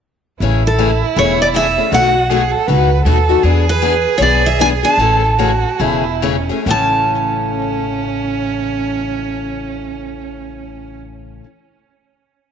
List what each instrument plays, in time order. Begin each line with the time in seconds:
0.40 upright bass A1, steel-string acoustic guitar C#3 E3 A3 C#4 G#4, violin E4
0.67 steel-string acoustic guitar A4
0.78 steel-string acoustic guitar C#3 E3 A3 C#4 G#4
1.16 upright bass E1, steel-string acoustic guitar C#3 E3 A3 C#4 G#4 C#5
1.42 steel-string acoustic guitar D5
1.54 steel-string acoustic guitar C#3 E3 A3 C#4 G#4 E5
1.77 steel-string acoustic guitar A3 C#4 G#4
1.91 upright bass B1, steel-string acoustic guitar B2 F#3 A3 D#4 F#4 F#5, violin F#4
2.29 steel-string acoustic guitar B2 F#3 A3 D#4 F#4, violin G#4
2.52 violin A4
2.67 upright bass C#2, steel-string acoustic guitar B2 F#3 A3 D#4 F#4, violin B4
3.05 upright bass D#2, steel-string acoustic guitar B2 F#3 A3 D#4 F#4, violin A4
3.29 steel-string acoustic guitar A3 D#4 F#4
3.43 upright bass E2, steel-string acoustic guitar E3 B3 D4 G#4, violin G#4
3.69 steel-string acoustic guitar B4
3.82 steel-string acoustic guitar E3 B3 D4 G#4
4.18 upright bass B1, steel-string acoustic guitar E3 B3 D4 G#4 C#5
4.22 steel-string acoustic guitar D5
4.46 steel-string acoustic guitar E5
4.59 steel-string acoustic guitar E3 B3 D4 G#4 G#5
4.83 steel-string acoustic guitar B3 D4 G#4 A5
4.97 upright bass A1, steel-string acoustic guitar C#3 E3 A3 C#4 G#4, violin A4
5.39 steel-string acoustic guitar C#3 E3 A3 C#4 G#4, violin F#4
5.80 upright bass E1, steel-string acoustic guitar C#3 E3 A3 C#4 G#4, violin E4
6.22 steel-string acoustic guitar C#3 E3 A3 C#4 G#4, violin C#4
6.49 steel-string acoustic guitar A3 C#4 G#4
6.66 upright bass A1, steel-string acoustic guitar A2 C#3 E3 A3 C#4, violin C#4
6.70 steel-string acoustic guitar A5